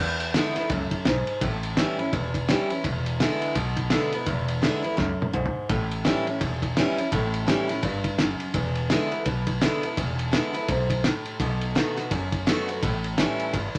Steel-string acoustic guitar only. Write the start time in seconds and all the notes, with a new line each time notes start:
0.00 E2
0.34 D3 G#3 B3 E4
0.56 B3 E4
0.72 F#2
1.07 G#2
1.42 A2
1.77 E3 G3 C#4 E4
1.98 C#4 E4
2.13 E2
2.48 E3 G3 C#4 E4
2.70 C#4 E4
2.84 E2
3.20 D3 G#3 B3 E4
3.56 B2
3.90 D3 G#3 B3 E4
4.12 B3 E4
4.26 E2
4.62 D3 G#3 B3 E4
4.83 B3 E4
4.97 F#2
5.33 G#2
5.69 A2
6.05 E3 G3 C#4 E4
6.27 C#4 E4
6.41 E2
6.77 E3 G3 C#4 E4
6.97 C#4 E4
7.12 A2
7.47 E3 G3 C#4 E4
7.67 C#4 E4
7.83 G2
8.19 F#2
8.54 E2
8.90 D3 G#3 B3 E4
9.11 B3 E4
9.26 B2
9.61 D3 G#3 B3 E4
9.83 B3 E4
9.97 E2
10.31 D3 G#3 B3 E4
10.53 B3 E4
10.68 G#2
11.05 A2
11.40 B2
11.75 D#3 A3 B3 F#4
11.96 B3 F#4
12.11 F#2
12.46 D#3 A3 B3 F#4
12.68 B3 F#4
12.83 A2
13.18 E3 G3 C#4 E4
13.54 E2